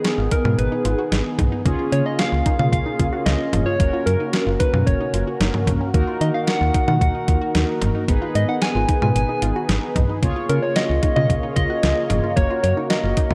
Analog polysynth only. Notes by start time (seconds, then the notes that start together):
Already playing: B3 D#4 G#4
1.66 C#4 F4 G#4
3.80 C#4 F#4 A#4
5.94 D#4 F#4 A#4
8.08 D#4 G#4 B4
10.22 F4 G#4 C#5
12.37 F#4 A#4 C#5